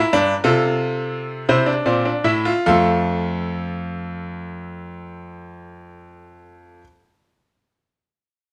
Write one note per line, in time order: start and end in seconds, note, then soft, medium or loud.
0.00 0.13 E4 medium
0.00 0.42 A#4 medium
0.13 0.33 G2 medium
0.13 0.33 D4 loud
0.44 1.45 C3 medium
0.44 1.45 F4 medium
0.44 1.45 A4 medium
1.49 1.72 C3 medium
1.49 1.67 E4 medium
1.49 1.72 C5 medium
1.66 1.85 D4 medium
1.86 2.10 A#2 medium
1.86 2.05 C4 medium
1.86 2.10 D5 medium
2.05 2.25 D4 medium
2.24 2.50 A2 medium
2.24 2.45 E4 medium
2.24 2.50 E5 medium
2.45 2.66 F4 medium
2.66 6.81 F2 medium
2.66 6.84 F3 medium
2.66 6.84 A3 medium
2.66 6.81 A4 medium
2.66 6.80 F5 medium